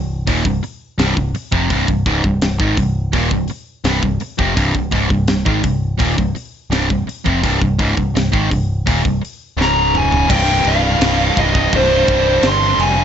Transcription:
Already playing: picked electric bass C1, distorted electric guitar C2 G2
0.27 picked electric bass D#1, distorted electric guitar D#2 A#2, kick, open hi-hat
0.45 picked electric bass C1, distorted electric guitar C2 G2, kick
0.63 muted distorted electric guitar stroke, muted picked electric bass stroke, open hi-hat
0.98 picked electric bass C1, distorted electric guitar C2 G2, snare, open hi-hat
1.16 picked electric bass C1, distorted electric guitar C2 G2, kick
1.34 muted picked electric bass stroke, muted distorted electric guitar stroke, open hi-hat
1.52 picked electric bass F1, distorted electric guitar F2 C3, kick
1.70 picked electric bass C1, distorted electric guitar C2 G2, kick, open hi-hat
1.88 picked electric bass C1, distorted electric guitar C2 G2, kick
2.06 picked electric bass C#1, distorted electric guitar C#2 G#2, kick, open hi-hat
2.24 picked electric bass C1, distorted electric guitar C2 G2, kick
2.42 picked electric bass C1, distorted electric guitar C2 G2, snare, open hi-hat
2.60 picked electric bass G#1, distorted electric guitar G#2 D#3, kick
2.77 picked electric bass C1, distorted electric guitar C2 G2, kick, open hi-hat
3.13 picked electric bass D#1, distorted electric guitar D#2 A#2, kick, open hi-hat
3.31 picked electric bass C1, distorted electric guitar C2 G2, kick
3.48 muted picked electric bass stroke, muted distorted electric guitar stroke, open hi-hat
3.84 picked electric bass C1, distorted electric guitar C2 G2, snare, open hi-hat
4.02 picked electric bass C1, distorted electric guitar C2 G2, kick
4.20 muted picked electric bass stroke, muted distorted electric guitar stroke, open hi-hat
4.38 picked electric bass F1, distorted electric guitar F2 C3, kick
4.55 picked electric bass C1, distorted electric guitar C2 G2, kick, open hi-hat
4.75 picked electric bass C1, distorted electric guitar C2 G2, kick
4.91 picked electric bass C#1, distorted electric guitar C#2 G#2, kick, open hi-hat
5.10 picked electric bass C1, distorted electric guitar C2 G2, kick
5.28 picked electric bass C1, distorted electric guitar C2 G2, snare, open hi-hat
5.45 picked electric bass G#1, distorted electric guitar G#2 D#3, kick
5.63 picked electric bass C1, distorted electric guitar C2 G2, kick, open hi-hat
5.98 picked electric bass D#1, distorted electric guitar D#2 A#2, kick, open hi-hat
6.18 picked electric bass C1, distorted electric guitar C2 G2, kick
6.35 muted picked electric bass stroke, muted distorted electric guitar stroke, open hi-hat
6.70 picked electric bass C1, distorted electric guitar C2 G2, snare, open hi-hat
6.90 picked electric bass C1, distorted electric guitar C2 G2, kick
7.06 muted picked electric bass stroke, muted distorted electric guitar stroke, open hi-hat
7.25 picked electric bass F1, distorted electric guitar F2 C3, kick
7.43 picked electric bass C1, distorted electric guitar C2 G2, kick, open hi-hat
7.61 picked electric bass C1, distorted electric guitar C2 G2, kick
7.79 picked electric bass C#1, distorted electric guitar C#2 G#2, kick, open hi-hat
7.96 picked electric bass C1, distorted electric guitar C2 G2, kick
8.14 picked electric bass C1, distorted electric guitar C2 G2, snare, open hi-hat
8.32 picked electric bass G#1, distorted electric guitar G#2 D#3, kick
8.51 picked electric bass C1, distorted electric guitar C2 G2, kick, open hi-hat
8.86 picked electric bass D#1, distorted electric guitar D#2 A#2, kick, open hi-hat
9.04 picked electric bass C1, distorted electric guitar C2 G2, kick
9.21 muted distorted electric guitar stroke, muted picked electric bass stroke, open hi-hat
9.57 picked electric bass C#1, distorted electric guitar C#2 G#2 C#3, snare
9.62 lead electric guitar A#5
9.95 lead electric guitar G#5, mid tom
10.12 floor tom
10.28 picked electric bass C1, distorted electric guitar C2 G2, lead electric guitar G5, kick, crash
10.35 distorted electric guitar C2 G2
10.43 distorted electric guitar C2 G2
10.52 distorted electric guitar C2 G2
10.59 distorted electric guitar C2 G2
10.65 picked electric bass C1, distorted electric guitar C2 G2, lead electric guitar F5, crash
10.74 distorted electric guitar C2 G2
10.82 distorted electric guitar C2 G2
10.90 distorted electric guitar C2 G2
10.97 picked electric bass C1, distorted electric guitar C2 G2
11.01 snare, crash
11.06 distorted electric guitar C2 G2
11.13 distorted electric guitar C2 G2
11.20 distorted electric guitar C2 G2
11.29 distorted electric guitar C2 G2
11.36 picked electric bass C1, distorted electric guitar C2 G2, lead electric guitar D#5, kick, crash
11.44 distorted electric guitar C2 G2
11.51 distorted electric guitar C2 G2, kick
11.59 distorted electric guitar C2 G2
11.66 distorted electric guitar C2 G2
11.73 picked electric bass C1, distorted electric guitar C2 G2, lead electric guitar C5, kick, crash
11.82 distorted electric guitar C2 G2
11.90 distorted electric guitar C2 G2
11.98 distorted electric guitar C2 G2
12.05 picked electric bass C1, distorted electric guitar C2 G2, kick, crash
12.13 distorted electric guitar C2 G2
12.21 distorted electric guitar C2 G2
12.29 distorted electric guitar C2 G2
12.36 distorted electric guitar C2 G2
12.42 picked electric bass G1, distorted electric guitar C2 G2, snare, crash
12.47 lead electric guitar C6
12.51 distorted electric guitar C2 G2
12.60 distorted electric guitar C2 G2
12.68 distorted electric guitar C2 G2
12.75 picked electric bass F1, distorted electric guitar C2 G2
12.80 distorted electric guitar C2 G2, lead electric guitar G#5, crash
12.90 distorted electric guitar C2 G2
12.97 distorted electric guitar C2 G2

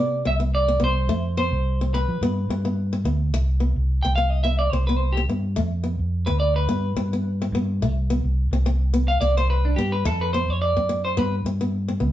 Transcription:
Already playing: fingered electric bass C3, nylon-string guitar B3, clean electric guitar D5
0.25 fingered electric bass C2, nylon-string guitar C4, clean electric guitar E5
0.40 nylon-string guitar B3
0.55 clean electric guitar D5
0.68 nylon-string guitar C4
0.80 fingered electric bass C2, nylon-string guitar B3
0.84 clean electric guitar C5
1.07 fingered electric bass F2, nylon-string guitar A3
1.37 nylon-string guitar B3, clean electric guitar C5
1.51 fingered electric bass C2
1.81 nylon-string guitar C4
1.94 nylon-string guitar C4, clean electric guitar B4
2.08 fingered electric bass F3
2.21 fingered electric bass G2, nylon-string guitar B3
2.49 fingered electric bass G2, nylon-string guitar C4
2.65 nylon-string guitar B3
2.93 nylon-string guitar C4
3.04 fingered electric bass D2, nylon-string guitar B3
3.33 fingered electric bass C2, muted nylon-string guitar stroke
3.60 nylon-string guitar B3
3.76 fingered electric bass C2
4.03 fingered electric bass C2, nylon-string guitar C4, clean electric guitar G5
4.16 nylon-string guitar C4, clean electric guitar F5
4.30 clean electric guitar D#5
4.44 nylon-string guitar B3, clean electric guitar E5
4.59 clean electric guitar D5
4.72 fingered electric bass C2, nylon-string guitar C4, clean electric guitar C5
4.87 nylon-string guitar B3, clean electric guitar B4
4.98 clean electric guitar C5
5.13 clean electric guitar G4
5.17 nylon-string guitar C4
5.29 fingered electric bass G2, nylon-string guitar B3
5.56 fingered electric bass F2, nylon-string guitar A3
5.84 nylon-string guitar B3
5.99 fingered electric bass F2
6.26 fingered electric bass D2, nylon-string guitar C4, clean electric guitar B4
6.40 clean electric guitar D5
6.56 clean electric guitar B4
6.68 fingered electric bass G2, nylon-string guitar B3
6.96 fingered electric bass G2, nylon-string guitar C4
7.13 nylon-string guitar B3
7.42 nylon-string guitar C4
7.52 fingered electric bass G2, nylon-string guitar B3
7.81 fingered electric bass C2, nylon-string guitar A3
8.10 nylon-string guitar B3
8.24 fingered electric bass C2
8.51 fingered electric bass C2, nylon-string guitar C4
8.66 nylon-string guitar C4
8.94 nylon-string guitar B3
9.08 clean electric guitar F5
9.21 fingered electric bass C2, nylon-string guitar C4, clean electric guitar D5
9.37 clean electric guitar C5, muted nylon-string guitar stroke
9.50 clean electric guitar B4
9.65 clean electric guitar D4
9.76 fingered electric bass G2, nylon-string guitar B3, clean electric guitar G4
9.92 clean electric guitar B4
10.05 fingered electric bass F2, clean electric guitar A4, muted nylon-string guitar stroke
10.21 clean electric guitar B4
10.33 nylon-string guitar B3, clean electric guitar C5
10.48 fingered electric bass F2, clean electric guitar C#5
10.62 clean electric guitar D5
10.77 fingered electric bass F#2, nylon-string guitar C4
10.89 nylon-string guitar C4
11.05 clean electric guitar C5
11.17 fingered electric bass G2, nylon-string guitar B3, clean electric guitar B4
11.44 fingered electric bass G2, nylon-string guitar C4
11.61 nylon-string guitar B3
11.88 nylon-string guitar C4
12.00 fingered electric bass C#2, nylon-string guitar B3

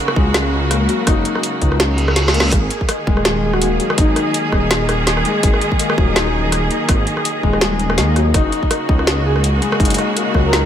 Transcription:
Already playing: string section C#3 A#3 F#4, felt piano F#3 G#3 A#3 D#4, synth texture A#4
0.08 cross-stick
0.16 detuned saw bass C#2, felt piano G#3, kick
0.34 felt piano G#3, cross-stick, snare, closed hi-hat
0.71 felt piano A#3, cross-stick, closed hi-hat
0.89 felt piano F#3, closed hi-hat
1.07 detuned saw bass F#1, felt piano D#4, kick, cross-stick, closed hi-hat
1.25 closed hi-hat
1.35 cross-stick
1.43 closed hi-hat
1.62 detuned saw bass C#2, felt piano D#4, kick, closed hi-hat
1.72 cross-stick
1.80 snare, closed hi-hat, reverse cymbal
1.98 felt piano G#3, closed hi-hat
2.08 cross-stick
2.16 snare, closed hi-hat
2.26 detuned saw bass C#2, snare
2.34 felt piano A#3, closed hi-hat
2.40 detuned saw bass C#2, snare
2.52 detuned saw bass G#1, string section D#3 A#3 G#4, synth texture D#5, kick, cross-stick, closed hi-hat
2.70 closed hi-hat
2.81 kick
2.89 cross-stick, closed hi-hat
3.07 detuned saw bass D#1, felt piano G#3, kick
3.17 cross-stick
3.25 felt piano G#3, snare, closed hi-hat
3.44 soft synth lead G#4
3.53 soft synth lead F#4, cross-stick
3.61 felt piano A#3, soft synth lead F#4, closed hi-hat
3.80 felt piano F#3, closed hi-hat
3.90 cross-stick
3.98 detuned saw bass G#1, soft synth lead D#4, felt piano D#4, kick, closed hi-hat
4.16 cross-stick, closed hi-hat
4.34 closed hi-hat
4.52 detuned saw bass D#1, felt piano D#4, kick, cross-stick
4.71 snare, closed hi-hat
4.89 cross-stick, closed hi-hat
5.07 snare, closed hi-hat
5.17 cross-stick
5.25 felt piano G#3, closed hi-hat
5.43 detuned saw bass G#1, felt piano G#3, kick, closed hi-hat
5.54 cross-stick
5.61 closed hi-hat
5.72 kick
5.79 felt piano A#3, closed hi-hat
5.90 cross-stick
5.98 detuned saw bass D#1, felt piano F#3, kick
6.16 felt piano D#4, cross-stick, snare, closed hi-hat
6.52 cross-stick, closed hi-hat
6.71 felt piano D#4, closed hi-hat
6.89 detuned saw bass G#1, kick, cross-stick, closed hi-hat
7.07 closed hi-hat
7.17 cross-stick
7.25 closed hi-hat
7.43 detuned saw bass D#1, felt piano G#3, kick
7.53 cross-stick
7.61 felt piano G#3, snare, closed hi-hat
7.79 closed hi-hat
7.90 cross-stick
7.98 detuned saw bass D#2, felt piano A#3, snare, closed hi-hat
8.16 felt piano F#3, cross-stick, closed hi-hat
8.34 detuned saw bass F#1, string section C#3 A#3 F#4, felt piano D#4, kick, cross-stick, closed hi-hat
8.52 closed hi-hat
8.63 kick
8.71 cross-stick, closed hi-hat
8.89 detuned saw bass C#2, felt piano D#4, kick
8.99 cross-stick
9.07 snare, closed hi-hat
9.25 soft synth lead G#4
9.36 cross-stick
9.44 closed hi-hat
9.61 felt piano G#3, closed hi-hat
9.72 cross-stick
9.80 detuned saw bass F#1, felt piano D#4, kick, closed hi-hat
9.85 closed hi-hat
9.90 closed hi-hat
9.94 closed hi-hat
9.98 cross-stick, closed hi-hat
10.16 felt piano A#3, closed hi-hat
10.34 detuned saw bass C#2, felt piano F#3, kick, cross-stick
10.45 soft synth lead A#4
10.53 felt piano D#4, snare, closed hi-hat

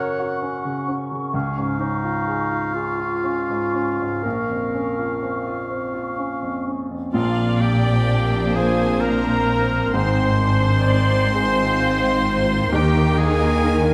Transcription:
Already playing: grand piano F#2 C#3 C#4 F#4 A#4, clarinet C#5, oboe F#5, flute section C#6
0.19 grand piano F#4
0.42 grand piano C#4
0.65 grand piano C#3
0.88 grand piano C#4
1.12 grand piano C#3
1.34 grand piano C#2, clarinet C#4, oboe F5
1.58 grand piano G#2
1.79 grand piano C#4, clarinet D#4
2.04 grand piano F4
2.27 grand piano G#4
2.51 grand piano F4
2.74 clarinet F4, grand piano G#4
3.00 grand piano F4
3.24 grand piano C#4
3.50 grand piano G#2
3.74 grand piano C#4
4.00 grand piano G#2
4.23 grand piano A#1, clarinet A#4, flute section C#6
4.50 grand piano F2
4.74 grand piano C#4
4.99 grand piano F4
5.23 grand piano C4
5.47 grand piano F4
5.70 grand piano C4
5.94 grand piano F4
6.18 grand piano C#4
6.42 grand piano F2
6.67 grand piano C#4
6.91 grand piano F2
7.12 double bass section A#1, grand piano A#1 A#2, cello section A#2, french horn section F3 C4, violin section A#3 D4 F5, oboe F4, clarinet F4, viola section D5, violin F5
7.61 clarinet G4, oboe G4, violin section G5, violin G5
8.55 grand piano C4 F4 C5, clarinet G#4, oboe G#4, viola section C5, violin G#5, violin section G#5
9.00 oboe A#4, clarinet A#4, violin section A#5, violin A#5
9.93 double bass section G#1, grand piano G#1 G#2, cello section G#2, french horn section D#3, violin section C4 C6, clarinet C5, oboe C5, viola section C5, violin C6
10.41 violin section D4, viola section C5
10.87 violin section C4, viola section D5
11.33 grand piano G#3 C4 C5, violin section F4, viola section C5
12.72 double bass section D#2, grand piano D#2 D#3, cello section D#3, violin section A#3 D#4 G5, french horn section A#3, oboe G4, clarinet G4, viola section A#4, violin G5
13.18 oboe G#4, clarinet G#4, violin section G#5, violin G#5

